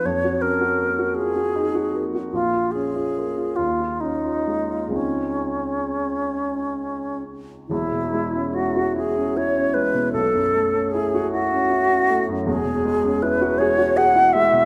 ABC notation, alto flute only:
X:1
M:6/8
L:1/8
Q:3/8=51
K:Db
V:1 name="Alto flute"
d B2 A2 z | F A2 F E2 | D4- D z | [K:E] E2 F G c B |
A2 G F3 | G2 B c f e |]